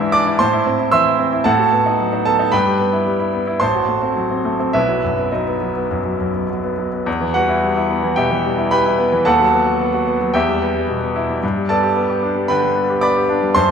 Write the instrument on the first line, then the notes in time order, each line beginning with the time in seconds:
grand piano
Already playing: G#2 E3 D4 E5 B5 E6
0.00 E4
0.12 D4 D5 D6
0.27 E4
0.39 A2 C5 A5 C6
0.53 E4
0.66 C4
0.79 E4
0.92 E3 E5 C6 E6
1.06 E4
1.19 C4
1.33 E4
1.44 A2 A4 F#5 A5
1.59 F#4
1.72 B3
1.86 D#4
1.99 F#3
2.13 D#4
2.25 B3 A4 A5
2.39 D#4
2.52 G2 B4 G5 B5
2.66 G4
2.80 B3
2.93 E4
3.06 G3
3.20 E4
3.33 B3
3.47 E4
3.60 A1 C5 A5 C6
3.75 F#4
3.88 A3
4.02 C4
4.16 F#3
4.31 C4
4.45 A3
4.60 C4
4.73 B1 E4 B4 E5
4.89 F#3
5.04 F#2
5.18 B3
5.32 F#3 D#4 B4 D#5
5.48 B3
5.62 F#3
5.76 B3
5.91 F#2
6.06 F#3
6.21 F#2
6.35 B3
6.50 F#3
6.64 B3
6.79 F#3
6.93 B3
7.06 E2
7.21 E3
7.34 G3 F#4 B4 F#5
7.49 E4
7.63 G3
7.76 E4
7.90 B3
8.03 E3
8.16 B2 G4 E5 G5
8.31 E3
8.45 G3
8.58 E4
8.71 G3 B4 G5 B5
8.86 E4
8.99 B3
9.12 E3
9.25 D#2 A4 F#5 A5
9.40 F#3
9.53 B3
9.66 F#4
9.80 B3
9.94 F#4
10.07 B3
10.21 F#3
10.34 E2 G4 E5 G5
10.48 G3
10.62 B3
10.75 G3
10.89 B2
11.03 B3
11.16 E4
11.30 G3
11.43 G2
11.57 G3
11.69 B3 A4 D5 A5
11.83 G4
11.96 B3
12.10 G4
12.23 D4
12.36 G3
12.48 D3 B4 G5 B5
12.63 G3
12.76 B3
12.90 G4
13.01 B3 D5 B5 D6
13.16 G4
13.29 D4
13.43 G3
13.55 F#2 C5 A5 C6